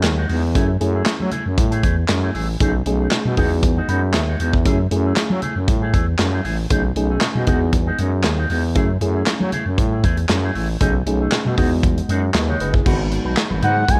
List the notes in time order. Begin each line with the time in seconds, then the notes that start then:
0.03 D#2, snare, clap, closed hi-hat, muted conga, high conga
0.17 G#3 D#4 F#4
0.29 E2 G#3 D#4 F#4, open hi-hat
0.42 muted clean electric guitar stroke
0.54 F#2 A3 C#4 E4 G#4, kick, closed hi-hat, muted conga, low conga
0.68 muted clean electric guitar stroke
0.80 F#2 A3 C#4 E4 G#4, muted clean electric guitar stroke, closed hi-hat
0.94 A3 E4 G#4
1.06 F#3, snare, clap, closed hi-hat
1.20 F#3 A3 E4 G#4, muted conga, high conga
1.32 A3 E4 G#4, closed hi-hat, low conga
1.45 F#2, muted clean electric guitar stroke
1.58 A2, muted clean electric guitar stroke, kick, closed hi-hat, muted conga, high conga
1.71 A3 E4 G#4, closed hi-hat, muted conga
1.83 E2 A3 E4 G#4, kick, closed hi-hat
1.97 muted clean electric guitar stroke
2.09 F#2, snare, clap, closed hi-hat, muted conga, high conga
2.22 A3 E4 G#4
2.34 A1 A3 E4 G#4, open hi-hat
2.49 muted clean electric guitar stroke
2.60 B1 A3 C#4 D#4 G#4, kick, closed hi-hat, muted conga, low conga
2.74 muted clean electric guitar stroke
2.86 B1 A3 C#4 D#4 G#4, muted clean electric guitar stroke, closed hi-hat
3.00 A3 D#4 G#4
3.11 B2, snare, clap, closed hi-hat
3.25 B2 A3 D#4 G#4, high conga
3.37 E2 G#3 B3 D#4 F#4 G#4, kick, open hi-hat, low conga
3.51 muted clean electric guitar stroke
3.63 muted clean electric guitar stroke, kick, closed hi-hat, muted conga, high conga
3.76 G#3 D#4 F#4, muted conga
3.88 F#2 G#3 D#4 F#4 B5, closed hi-hat, high conga
4.02 muted clean electric guitar stroke
4.14 D#2 E5, snare, clap, closed hi-hat, muted conga, high conga
4.28 G#3 D#4 F#4, muted conga
4.40 E2 G#3 D#4 F#4, closed hi-hat
4.53 kick
4.65 F#2 A3 C#4 E4 G#4, kick, closed hi-hat, low conga
4.79 muted clean electric guitar stroke
4.91 F#2 A3 C#4 E4 G#4, muted clean electric guitar stroke, closed hi-hat
5.05 A3 E4 G#4
5.16 F#3, snare, clap, closed hi-hat, muted conga
5.30 F#3 A3 E4 G#4, high conga
5.42 A3 E4 G#4, closed hi-hat, low conga
5.56 F#2, muted clean electric guitar stroke
5.68 A2, muted clean electric guitar stroke, kick, closed hi-hat, muted conga, high conga
5.81 A3 E4 G#4
5.93 E2 A3 E4 G#4, kick, closed hi-hat
6.19 F#2, snare, clap, closed hi-hat, muted conga, high conga
6.32 A3 E4 G#4
6.44 A1 A3 E4 G#4, open hi-hat
6.58 muted clean electric guitar stroke
6.70 B1 A3 C#4 D#4 G#4, kick, closed hi-hat, muted conga, low conga
6.84 muted clean electric guitar stroke, muted conga
6.96 B1 A3 C#4 D#4 G#4, muted clean electric guitar stroke, closed hi-hat
7.09 A3 D#4 G#4
7.21 B2, snare, clap, closed hi-hat
7.35 B2 A3 D#4 G#4, muted conga, high conga
7.47 E2 G#3 B3 D#4 F#4 G#4, kick, closed hi-hat, low conga
7.61 muted clean electric guitar stroke
7.73 muted clean electric guitar stroke, kick, closed hi-hat, muted conga, high conga
7.86 G#3 D#4 F#4
7.99 F#2 G#3 D#4 F#4, closed hi-hat
8.12 muted clean electric guitar stroke
8.24 D#2, snare, clap, closed hi-hat, muted conga, high conga
8.37 G#3 D#4 F#4
8.50 E2 G#3 D#4 F#4, open hi-hat
8.63 muted clean electric guitar stroke
8.75 F#2 A3 C#4 E4 G#4, kick, closed hi-hat, low conga
8.89 muted clean electric guitar stroke
9.01 F#2 A3 C#4 E4 G#4, muted clean electric guitar stroke, closed hi-hat
9.14 A3 E4 G#4
9.26 F#3, snare, clap, closed hi-hat, muted conga
9.40 F#3 A3 E4 G#4, muted conga, high conga
9.52 A3 E4 G#4, closed hi-hat, low conga
9.66 F#2, muted clean electric guitar stroke
9.78 A2, muted clean electric guitar stroke, kick, closed hi-hat, muted conga, high conga
9.91 A3 E4 G#4
10.04 E2 A3 E4 G#4, kick, closed hi-hat
10.17 muted clean electric guitar stroke, closed hi-hat
10.29 F#2, snare, clap, closed hi-hat, high conga
10.43 A3 E4 G#4, muted conga
10.55 A1 A3 E4 G#4, open hi-hat
10.69 muted clean electric guitar stroke
10.81 B1 A3 C#4 D#4 G#4, kick, closed hi-hat, muted conga, low conga
10.94 muted clean electric guitar stroke
11.06 B1 A3 C#4 D#4 G#4, muted clean electric guitar stroke, closed hi-hat
11.20 A3 D#4 G#4
11.32 B2, snare, clap, closed hi-hat
11.45 B2 A3 D#4 G#4, muted conga, high conga
11.57 E2 G#3 B3 D#4 F#4, kick, open hi-hat, low conga
11.71 muted clean electric guitar stroke
11.83 muted clean electric guitar stroke, kick, closed hi-hat, muted conga, high conga
11.97 muted clean electric guitar stroke, closed hi-hat, muted conga
12.09 F#2 G#3 D#4 F#4, closed hi-hat
12.23 muted clean electric guitar stroke
12.34 D#2 B4 D#5, muted clean electric guitar stroke, snare, clap, closed hi-hat, muted conga, high conga
12.48 G#3 D#4 F#4 C#5, muted conga, low conga
12.60 F#1 G#3 D#4 F#4 G#4 B4, closed hi-hat
12.74 E4 G#4, muted clean electric guitar stroke, kick
12.85 G#1 D#3 F#3 G#3 B3 D#4 F#4 B4, kick, crash, low conga
12.99 muted clean electric guitar stroke
13.11 muted clean electric guitar stroke, closed hi-hat
13.25 B1 D#4 F#4 B4
13.37 snare, clap, closed hi-hat
13.50 G#1 D#4 F#4 B4, high conga
13.62 G#2 D#4 F#4 B4 F#5, closed hi-hat, low conga
13.76 muted clean electric guitar stroke
13.88 C#2 G#5, muted clean electric guitar stroke, kick, closed hi-hat, high conga